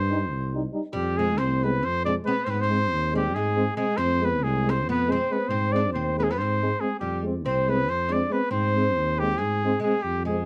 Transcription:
Already playing: G2 C4 C5
0.11 G3 D#4
0.31 C2
0.54 G3 D#4
0.73 G3 D#4
0.93 F2 G3 G4
1.16 G#3 C4 G#4
1.38 C2 C4 C5
1.63 G#3 B3 C4 B4
1.83 F2 C4 C5
2.06 G#3 C4 D4 D5
2.24 G#3 B3 C4 B4
2.45 G#2 C4 C5
2.50 B3 B4
2.61 C4 C5
2.69 G#3 C4
2.92 D#2
3.13 G3 G#3 C4 G4
3.35 G#2 G#3 G#4
3.56 G#3 C4
3.76 G#3 C4 G#4
3.97 F2 C4 C5
4.19 G#3 B3 C4
4.25 B4
4.41 C2 G#3 G#4
4.63 G#3 C4
4.69 C4 C5
4.86 F2 B3
4.90 B4
5.08 G#3 C4 C5
5.12 C4
5.30 G#3 B3 C4 B4
5.49 G#2 C4 C5
5.72 G#3 C4 D4 D5
5.93 D#2 C4 C5
6.18 G#3 B3 C4 B4
6.23 G#3 G#4
6.31 B3 B4
6.38 G#2 C4 C5
6.61 G#3 C4
6.80 G#3 C4 G#4
7.00 F2 G3 G4
7.22 G#3
7.26 C4
7.46 C2 C4 C5
7.67 G#3 B3 B4
7.72 C4
7.88 F2 C4 C5
8.09 G#3 D4
8.13 C4 D5
8.29 G#3 B3 C4 B4
8.51 G#2 C4 C5
8.75 G#3 C4
8.96 D#2
9.19 G3 G#3 C4 G4
9.38 G#3 G#4
9.42 G#2
9.64 G#3 C4
9.80 G#3 G#4
9.84 G#3 C4
9.99 G3 G4
10.05 F2
10.25 G#3 C4 G#4

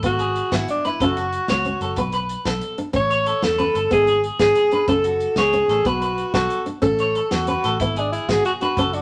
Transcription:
Already playing: A4
0.03 G#1 B3 F#4, kick, closed hi-hat
0.19 G#4, closed hi-hat
0.36 closed hi-hat
0.52 G#1 B3 E4 F#4, kick, snare, closed hi-hat
0.68 D4, closed hi-hat
0.85 D4 E4 B4, closed hi-hat
1.00 F#1 C#4 F#4 A4, kick, closed hi-hat
1.17 F#4, closed hi-hat
1.32 closed hi-hat
1.48 C#2 B3 C#5, snare, closed hi-hat
1.53 F#4
1.65 C#4, closed hi-hat
1.81 F#1 A4, closed hi-hat
1.96 B1 B3 B4, kick, closed hi-hat
2.12 B4, closed hi-hat
2.29 closed hi-hat
2.45 B1 B3 A4, kick, snare, closed hi-hat
2.61 closed hi-hat
2.78 D4, closed hi-hat
2.93 A1 C#4 C#5, kick, closed hi-hat
3.11 C#5, closed hi-hat
3.26 A4, closed hi-hat
3.42 E2 B3 A4, snare, closed hi-hat
3.58 C#4 B4, closed hi-hat
3.75 G1 A4, closed hi-hat
3.91 G#1 B3 G#4, kick, closed hi-hat
4.07 G#4, closed hi-hat
4.24 closed hi-hat
4.39 G#1 B3 G#4, muted clean electric guitar stroke, kick, snare, closed hi-hat
4.55 G#4, closed hi-hat
4.71 D4 B4, closed hi-hat
4.88 F#1 C#4 A4, kick, closed hi-hat
5.04 F#4, closed hi-hat
5.20 closed hi-hat
5.36 C#2 B3 G#4 C#5, snare, closed hi-hat
5.53 C#4, closed hi-hat
5.68 A1 A4, snare, closed hi-hat
5.85 B1 B3 F#4 B4, kick, closed hi-hat
6.02 B4, closed hi-hat
6.18 closed hi-hat
6.34 B1 B3 F#4 A4, kick, snare, closed hi-hat
6.50 closed hi-hat
6.66 D4, closed hi-hat
6.82 A1 C#4 A4, kick, closed hi-hat
6.99 C#5, closed hi-hat
7.15 A4, closed hi-hat
7.31 E2 B3 F#4, snare, closed hi-hat
7.47 C#4 B4, closed hi-hat
7.64 A1 A4, snare, closed hi-hat
7.80 G#1 B3 E4, kick, closed hi-hat
7.96 D4 G#4, closed hi-hat
8.12 E4, closed hi-hat
8.28 G#1 B3 F#4 G#4, kick, snare, closed hi-hat
8.45 F#4 G#4, closed hi-hat
8.61 D4 F#4 B4, closed hi-hat
8.77 F#1 C#4 A4, kick, closed hi-hat
8.93 D4 F#4, closed hi-hat

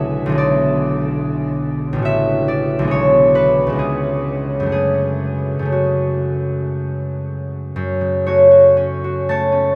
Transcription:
Already playing: B1 D3 G#3 G#4 E5
0.26 B1 D3
0.32 G#3 G#4
0.38 D5
1.93 A1 C#3
1.98 A3 F#4
2.05 E5
2.48 D5
2.79 B1 D3
2.85 G#3 G#4
2.91 C#5
3.35 B4
3.67 C#2 C#3
3.72 G#3 F4
3.79 G#4
4.60 F#2 C#3
4.66 A3 F#4
4.72 G#4
5.59 F#2 C#3
5.66 A3
5.72 F#4
7.76 F#2
8.01 C#3
8.26 A3 F#4 C#5
8.51 F#4
8.77 C#4
9.04 F#4
9.29 A3 C#5 A5
9.52 C#4

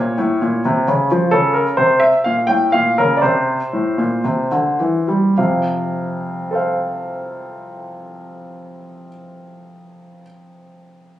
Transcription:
Already playing: A#2 C#5
0.18 A2
0.42 A#2
0.65 C3
0.88 C#3
1.11 F3
1.31 C#3 A4
1.54 A#4
1.77 C3 C5
2.00 E5
2.24 A#2 F5
2.47 A2 G5
2.72 A#2 F5
2.98 C#3 A#4
3.17 D5
3.22 C3 C5
3.73 A2
3.98 A#2
4.24 C3
4.51 D3
4.80 E3
5.08 G3
5.38 F2 C3 F5
6.51 A4 C5
6.55 F5

